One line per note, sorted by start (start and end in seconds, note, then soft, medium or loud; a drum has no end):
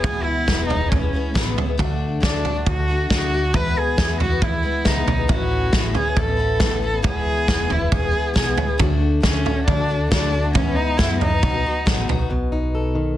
0.00 0.24 E1 medium
0.00 0.45 E2 medium
0.00 0.24 G#4 loud
0.00 kick medium
0.00 floor tom loud
0.05 0.46 B2 medium
0.05 0.46 E3 medium
0.05 0.47 G#3 medium
0.05 0.48 B3 medium
0.05 0.48 E4 medium
0.23 0.66 E4 medium
0.46 0.88 E1 medium
0.46 0.69 E2 medium
0.46 0.69 B2 medium
0.46 0.68 E3 medium
0.46 0.70 G#3 medium
0.46 0.70 B3 medium
0.46 0.70 E4 medium
0.46 kick medium
0.46 snare loud
0.66 0.80 E3 medium
0.66 0.90 D#4 medium
0.70 0.80 G#3 medium
0.70 0.79 B3 medium
0.70 0.78 E4 medium
0.70 floor tom medium
0.79 1.03 E3 soft
0.79 1.02 G#3 soft
0.79 1.01 B3 soft
0.79 1.00 E4 soft
0.88 1.12 E1 medium
0.88 1.31 C#4 medium
0.88 kick medium
0.88 floor tom medium
1.01 1.12 E3 soft
1.01 1.13 G#3 soft
1.01 1.13 B3 soft
1.01 1.13 E4 medium
1.13 1.34 E3 medium
1.13 1.34 G#3 medium
1.13 1.35 B3 medium
1.13 1.35 E4 medium
1.29 1.36 A3 soft
1.34 1.56 A1 medium
1.34 1.57 E2 medium
1.34 1.57 B2 medium
1.34 1.55 E3 medium
1.34 1.56 G#3 medium
1.34 1.68 B3 medium
1.34 1.57 B3 medium
1.34 1.57 E4 medium
1.34 kick loud
1.34 snare loud
1.56 1.68 E3 medium
1.56 1.67 G#3 medium
1.56 1.66 B3 medium
1.56 1.65 E4 medium
1.56 floor tom medium
1.66 1.77 E3 soft
1.66 1.77 G#3 soft
1.66 1.78 B3 soft
1.66 1.78 E4 medium
1.77 2.19 D2 medium
1.77 2.19 D3 medium
1.77 2.20 A3 medium
1.77 2.21 D4 medium
1.77 2.22 F#4 medium
1.77 kick loud
1.77 floor tom loud
2.20 2.43 D2 medium
2.20 2.42 D3 medium
2.20 2.43 A3 medium
2.20 2.44 D4 medium
2.20 2.64 D4 medium
2.20 2.45 F#4 medium
2.20 kick loud
2.20 snare medium
2.43 2.55 D3 medium
2.43 2.55 A3 medium
2.43 2.55 D4 medium
2.43 2.53 F#4 medium
2.43 floor tom medium
2.54 2.78 A3 soft
2.54 2.76 D4 soft
2.54 2.75 F#4 medium
2.66 3.07 D2 medium
2.66 3.08 F#4 medium
2.66 kick medium
2.66 floor tom medium
2.76 2.88 A3 soft
2.76 2.89 D4 soft
2.76 2.88 F#4 medium
2.88 3.08 D3 medium
2.88 3.09 A3 medium
2.88 3.10 D4 medium
2.88 3.11 F#4 medium
3.10 3.54 D2 medium
3.10 3.30 D3 medium
3.10 3.31 A3 medium
3.10 3.32 D4 medium
3.10 3.33 F#4 medium
3.10 3.57 F#4 loud
3.10 kick loud
3.10 snare loud
3.31 3.43 D3 medium
3.31 3.44 A3 medium
3.31 3.42 D4 medium
3.31 3.41 F#4 medium
3.42 3.55 A3 soft
3.42 3.54 D4 soft
3.42 3.54 F#4 soft
3.53 3.95 E2 medium
3.53 3.74 E2 medium
3.53 3.96 B2 medium
3.53 3.97 E3 medium
3.53 3.97 G#3 medium
3.53 3.98 B3 medium
3.53 3.99 E4 medium
3.53 3.80 B4 medium
3.53 kick loud
3.53 floor tom loud
3.78 4.20 G#4 medium
3.96 4.19 E2 medium
3.96 4.38 E2 medium
3.96 4.18 E3 medium
3.96 4.19 B3 medium
3.96 4.20 E4 medium
3.96 kick loud
3.96 snare loud
4.19 4.30 E3 medium
4.19 4.31 G#3 medium
4.19 4.30 B3 medium
4.19 4.29 E4 medium
4.19 4.45 F#4 medium
4.19 floor tom medium
4.30 4.53 E3 soft
4.30 4.53 G#3 soft
4.30 4.52 B3 soft
4.30 4.51 E4 soft
4.42 4.62 E2 medium
4.42 4.89 E4 medium
4.42 kick medium
4.42 floor tom medium
4.52 4.61 E3 soft
4.52 4.62 G#3 soft
4.52 4.63 B3 soft
4.52 4.63 E4 soft
4.63 4.85 E3 medium
4.63 4.85 G#3 medium
4.63 4.85 B3 medium
4.63 4.85 E4 medium
4.84 5.05 C#2 medium
4.84 5.07 E2 medium
4.84 5.07 B2 medium
4.84 5.05 E3 medium
4.84 5.05 G#3 medium
4.84 5.07 B3 medium
4.84 5.19 D#4 medium
4.84 5.08 E4 medium
4.84 kick medium
4.84 snare loud
5.06 5.27 B1 medium
5.06 5.18 E3 soft
5.06 5.18 G#3 medium
5.06 5.17 B3 medium
5.06 5.16 E4 medium
5.06 floor tom medium
5.17 5.27 E3 soft
5.17 5.28 G#3 soft
5.17 5.27 B3 soft
5.17 5.28 E4 soft
5.27 5.70 A1 medium
5.27 5.71 A2 medium
5.27 5.73 E3 medium
5.27 5.73 B3 medium
5.27 5.73 C#4 medium
5.27 5.74 E4 medium
5.27 kick loud
5.27 floor tom loud
5.32 5.92 F#4 medium
5.73 5.93 A1 medium
5.73 5.95 A2 medium
5.73 5.93 E3 medium
5.73 5.94 B3 medium
5.73 5.95 C#4 medium
5.73 5.96 E4 medium
5.73 kick medium
5.73 snare loud
5.94 6.05 E3 medium
5.94 6.06 B3 medium
5.94 6.06 C#4 medium
5.94 6.04 E4 medium
5.94 6.20 G#4 medium
5.94 floor tom medium
6.05 6.29 B3 soft
6.05 6.27 C#4 soft
6.05 6.26 E4 soft
6.17 6.57 A1 medium
6.17 6.83 A4 medium
6.17 kick medium
6.17 floor tom medium
6.27 6.37 B3 soft
6.27 6.38 C#4 soft
6.27 6.38 E4 soft
6.37 6.59 E3 medium
6.37 6.59 B3 medium
6.37 6.60 C#4 medium
6.37 6.61 E4 medium
6.60 7.04 A1 medium
6.60 6.82 A2 medium
6.60 6.79 E3 medium
6.60 6.80 B3 medium
6.60 6.81 C#4 medium
6.60 6.83 E4 medium
6.60 kick loud
6.60 snare medium
6.80 6.93 E3 medium
6.80 6.92 B3 medium
6.80 6.90 C#4 medium
6.80 6.89 E4 medium
6.80 7.04 A4 medium
6.90 7.03 B3 soft
6.90 7.04 C#4 soft
6.90 7.03 E4 medium
7.02 7.25 E1 medium
7.02 7.46 E2 medium
7.02 7.46 B2 medium
7.02 7.46 E3 medium
7.02 7.47 G#3 medium
7.02 7.48 B3 medium
7.02 7.48 E4 medium
7.02 7.74 G#4 medium
7.02 kick medium
7.02 floor tom loud
7.47 7.89 E1 medium
7.47 7.70 E2 medium
7.47 7.70 B2 medium
7.47 7.67 E3 medium
7.47 7.67 G#3 medium
7.47 7.68 B3 medium
7.47 7.69 E4 medium
7.47 kick loud
7.47 snare medium
7.68 7.80 E3 medium
7.68 7.79 G#3 medium
7.68 7.79 B3 medium
7.68 7.78 E4 medium
7.68 floor tom medium
7.72 7.93 E4 medium
7.79 8.03 E3 soft
7.79 8.02 G#3 soft
7.79 8.01 B3 soft
7.79 7.99 E4 soft
7.92 8.12 E1 medium
7.92 8.34 G#4 medium
7.92 kick medium
7.92 floor tom medium
8.01 8.10 E3 soft
8.01 8.11 G#3 soft
8.01 8.12 B3 soft
8.01 8.13 E4 soft
8.11 8.34 E3 medium
8.11 8.35 G#3 medium
8.11 8.35 B3 medium
8.11 8.35 E4 medium
8.34 8.56 B1 medium
8.34 8.57 E2 medium
8.34 8.57 B2 medium
8.34 8.55 E3 medium
8.34 8.56 G#3 medium
8.34 8.57 B3 medium
8.34 8.58 E4 medium
8.34 8.67 G#4 medium
8.34 kick loud
8.34 snare medium
8.56 8.68 E3 medium
8.56 8.68 G#3 medium
8.56 8.67 B3 medium
8.56 8.65 E4 medium
8.56 floor tom medium
8.67 8.77 E3 soft
8.67 8.78 G#3 soft
8.67 8.79 B3 soft
8.67 8.79 E4 soft
8.78 9.20 D2 medium
8.78 9.19 D3 medium
8.78 9.21 A3 medium
8.78 9.21 D4 loud
8.78 9.21 F#4 medium
8.78 kick loud
8.78 floor tom loud
9.20 9.44 D2 medium
9.20 9.42 D3 medium
9.20 9.44 A3 medium
9.20 9.64 C#4 medium
9.20 9.44 D4 medium
9.20 9.45 F#4 medium
9.20 kick medium
9.20 snare loud
9.43 9.55 D3 medium
9.43 9.56 A3 medium
9.43 9.55 D4 medium
9.43 9.54 F#4 medium
9.43 floor tom medium
9.55 9.79 A3 soft
9.55 9.78 D4 soft
9.55 9.75 F#4 soft
9.66 10.08 D2 medium
9.66 10.07 D4 medium
9.66 kick medium
9.66 floor tom medium
9.77 9.88 A3 soft
9.77 9.89 D4 soft
9.77 9.89 F#4 medium
9.88 10.09 D3 medium
9.88 10.10 A3 medium
9.88 10.11 D4 medium
9.88 10.11 F#4 medium
10.11 10.55 D2 medium
10.11 10.30 D3 medium
10.11 10.31 A3 medium
10.11 10.52 D4 medium
10.11 10.33 D4 medium
10.11 10.33 F#4 medium
10.11 kick loud
10.11 snare loud
10.32 10.43 D3 medium
10.32 10.44 A3 medium
10.32 10.43 D4 medium
10.32 10.41 F#4 medium
10.42 10.55 A3 soft
10.42 10.55 D4 soft
10.42 10.54 F#4 medium
10.53 10.96 E2 medium
10.53 10.75 E2 medium
10.53 10.96 B2 medium
10.53 10.97 E3 medium
10.53 10.97 G#3 medium
10.53 10.98 B3 medium
10.53 10.77 C#4 medium
10.53 10.99 E4 medium
10.53 kick loud
10.53 floor tom loud
10.75 10.99 D#4 medium
10.97 11.20 E2 medium
10.97 11.39 F#2 medium
10.97 11.20 B2 medium
10.97 11.19 E3 medium
10.97 11.21 G#3 medium
10.97 11.21 B3 medium
10.97 11.20 E4 medium
10.97 11.21 E4 medium
10.97 kick loud
10.97 snare loud
11.20 11.31 E3 medium
11.20 11.32 G#3 medium
11.20 11.31 B3 medium
11.20 12.04 D#4 medium
11.20 11.31 E4 medium
11.20 floor tom medium
11.32 11.42 E3 soft
11.32 11.43 G#3 soft
11.32 11.42 B3 soft
11.32 11.43 E4 soft
11.42 11.63 B1 medium
11.42 11.53 B2 medium
11.42 11.54 F#3 medium
11.42 11.54 B3 medium
11.42 11.53 D#4 medium
11.42 11.51 F#4 medium
11.42 kick medium
11.42 floor tom medium
11.52 11.64 B3 soft
11.52 11.65 D#4 soft
11.52 11.64 F#4 soft
11.63 11.85 F#3 medium
11.63 11.86 B3 medium
11.63 11.86 D#4 medium
11.63 11.86 F#4 medium
11.85 12.06 A1 medium
11.85 12.08 B2 medium
11.85 12.07 F#3 medium
11.85 12.08 B3 medium
11.85 12.08 D#4 medium
11.85 12.09 F#4 medium
11.85 kick loud
11.85 snare loud
12.08 12.28 B1 medium
12.08 12.19 F#3 medium
12.08 12.20 B3 medium
12.08 12.19 D#4 medium
12.08 12.18 F#4 medium
12.08 floor tom medium
12.19 12.31 B3 soft
12.19 12.31 D#4 soft
12.19 12.30 F#4 medium
12.30 13.14 B1 medium
12.30 12.96 B2 medium
12.30 13.17 B3 medium
12.52 13.17 D#4 soft
12.75 13.17 A4 soft
12.95 13.17 D#3 medium